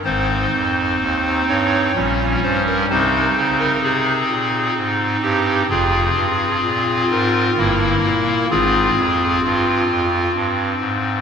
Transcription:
<<
  \new Staff \with { instrumentName = "Pipe organ" } { \time 3/4 \key aes \major \tempo 4 = 64 << { c''4. des''4 c''16 bes'16 | c''8. bes'16 aes'4 r8 g'8 | aes'4. bes'4. | aes'4 f'4 r4 | } \\ { <c' ees'>2 <g des'>4 | <c' ees'>2. | <c' f'>2 <bes e'>4 | <c' f'>2. | } >> }
  \new Staff \with { instrumentName = "Pipe organ" } { \clef bass \time 3/4 \key aes \major <aes,, aes,>8 f,8 ees,8 g,8 <bes,, bes,>8 g,8 | <c, c>8 des8 c8 bes,8 aes,8 g,8 | <f,, f,>8 g,8 bes,8 aes,8 <g,, g,>8 bes,8 | <aes,, aes,>8 f,8 g,8 f,8 g,8 aes,8 | }
>>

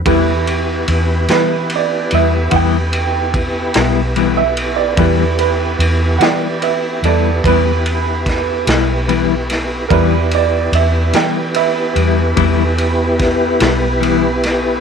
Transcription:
<<
  \new Staff \with { instrumentName = "Upright piano" } { \time 12/8 \key e \minor \tempo 4. = 49 r4. b'8 d''8 e''8 <fis'' g''>2~ <fis'' g''>16 e''8 d''16~ | d''8 b'8 r8 <d'' fis'' g''>8 <b' e''>8 <a' d''>8 b'2 r4 | <ais' b'>8 d''8 e''8 g''8 <b' e''>8 r2. r8 | }
  \new Staff \with { instrumentName = "Grand piano" } { \time 12/8 \key e \minor <e' g' b'>1. | <e' g' b'>1. | <e' g' d''>1. | }
  \new Staff \with { instrumentName = "Tonewheel organ" } { \time 12/8 \key e \minor <b e' g' b'>1. | <b e' g' b'>1. | <b e' g' b'>1. | }
  \new Staff \with { instrumentName = "Clean electric guitar" } { \time 12/8 \key e \minor <e g b e'>8 r4 <g b e'>8 r8 <g b e'>8 <e g b e'>8 r4 <g b e'>8 <e g b e'>8 r8 | <e g b e'>8 r4 <g b e'>8 r8 <g b e'>8 <e g b e'>8 r4 <g b e'>8 <e g b e'>8 r8 | <e g b e'>8 r4 <g b e'>8 r8 <g b e'>8 <e g b e'>8 r4 <g b e'>8 <e g b e'>8 r8 | }
  \new Staff \with { instrumentName = "Fingered electric bass" } { \clef bass \time 12/8 \key e \minor e,4 e,8 e4 e,8 e,4. b,,4. | e,4 e,8 e4 e,8 e,4. b,,4. | e,4 e,8 e4 e,8 e,4. b,,4. | }
  \new DrumStaff \with { instrumentName = "Drums" } \drummode { \time 12/8 <bd cymr>8 cymr8 cymr8 <cymr sn>8 cymr8 cymr8 <bd cymr>8 cymr8 <bd cymr>8 <cymr sn>8 cymr8 cymr8 | <bd cymr>8 cymr8 cymr8 <cymr sn>8 cymr8 cymr8 <bd cymr>8 cymr8 <bd cymr sn>8 <cymr sn>8 cymr8 <cymr sn>8 | <bd cymr>8 cymr8 cymr8 <cymr sn>8 cymr8 cymr8 <bd cymr>8 cymr8 <bd cymr sn>8 <cymr sn>8 cymr8 <cymr sn>8 | }
>>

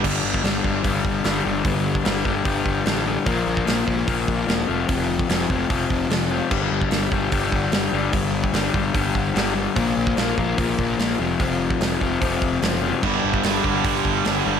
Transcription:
<<
  \new Staff \with { instrumentName = "Distorted electric guitar" } { \clef bass \time 4/4 \key f \lydian \tempo 4 = 148 r1 | r1 | r1 | r1 |
r1 | r1 | r1 | r1 |
<g, d g>4 <g, d g>8 <g, d g>8 <g, d g>4 <g, d g>8 <g, d g>8 | }
  \new Staff \with { instrumentName = "Overdriven electric guitar" } { \clef bass \time 4/4 \key f \lydian <g, d g>4 <g, d g>8 <g, d g>8 <g, d g>4 <g, d g>8 <g, d g>8 | <g, d g>4 <g, d g>8 <g, d g>8 <g, d g>4 <g, d g>8 <g, d g>8 | <bes, f bes>4 <bes, f bes>8 <bes, f bes>8 <bes, f bes>4 <bes, f bes>8 <f, c f>8 | <f, c f>4 <f, c f>8 <f, c f>8 <f, c f>4 <f, c f>8 <f, c f>8 |
<g, d g>4 <g, d g>8 <g, d g>8 <g, d g>4 <g, d g>8 <g, d g>8 | <g, d g>4 <g, d g>8 <g, d g>8 <g, d g>4 <g, d g>8 <g, d g>8 | <bes, f bes>4 <bes, f bes>8 <bes, f bes>8 <bes, f bes>4 <bes, f bes>8 <f, c f>8 | <f, c f>4 <f, c f>8 <f, c f>8 <f, c f>4 <f, c f>8 <f, c f>8 |
<g, d g>4 <g, d g>8 <g, d g>8 <g, d g>4 <g, d g>8 <g, d g>8 | }
  \new Staff \with { instrumentName = "Picked electric bass" } { \clef bass \time 4/4 \key f \lydian g,,8 g,,8 g,,8 g,,8 g,,8 g,,8 g,,8 g,,8 | g,,4 g,,8 g,,8 g,,8 g,,8 a,,4 | bes,,8 bes,,8 bes,,8 bes,,8 bes,,8 bes,,8 e,,8 f,,8 | f,,4 f,,8 f,,8 f,,8 f,,8 f,,4 |
g,,8 g,,8 g,,8 g,,8 g,,8 g,,8 g,,8 g,,8 | g,,4 g,,8 g,,8 g,,8 g,,8 g,,4 | bes,,8 bes,,8 bes,,8 bes,,8 bes,,8 bes,,8 bes,,8 f,,8 | f,,4 f,,8 f,,8 f,,8 f,,8 fis,,4 |
g,,8 g,,8 g,,8 g,,8 g,,8 g,,8 g,,8 g,,8 | }
  \new DrumStaff \with { instrumentName = "Drums" } \drummode { \time 4/4 <cymc bd>8. bd16 <hho sn>8 bd8 <hho bd>8 bd8 <hho sn>4 | <hho bd>8. bd16 <hho sn>8 bd8 <hho bd>8 bd8 <hho sn>4 | <hho bd>8. bd16 <hho sn>8 bd8 <hho bd>8 bd8 <hho sn>4 | <hho bd>8. bd16 <hho sn>8 bd8 <hho bd>8 bd8 <hho sn>4 |
<cymc bd>8. bd16 <hho sn>8 bd8 <hho bd>8 bd8 <hho sn>4 | <hho bd>8. bd16 <hho sn>8 bd8 <hho bd>8 bd8 <hho sn>4 | <hho bd>8. bd16 <hho sn>8 bd8 <hho bd>8 bd8 <hho sn>4 | <hho bd>8. bd16 <hho sn>8 bd8 <hho bd>8 bd8 <hho sn>4 |
<cymc bd>8. bd16 <hho sn>8 bd8 <hho bd>8 bd8 <hho sn>4 | }
>>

